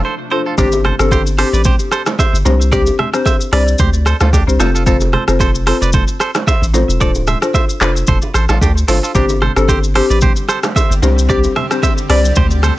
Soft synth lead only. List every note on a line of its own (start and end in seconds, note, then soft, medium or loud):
0.58 0.81 G4 loud
1.00 1.22 A4 medium
1.39 1.61 G4 medium
2.73 2.95 G4 loud
3.14 3.37 C5 medium
3.53 3.76 D5 medium
4.60 4.72 C5 medium
9.15 9.38 G4 loud
9.57 9.80 A4 medium
9.96 10.18 G4 medium
11.30 11.52 G4 loud
11.71 11.94 C5 medium
12.10 12.33 D5 medium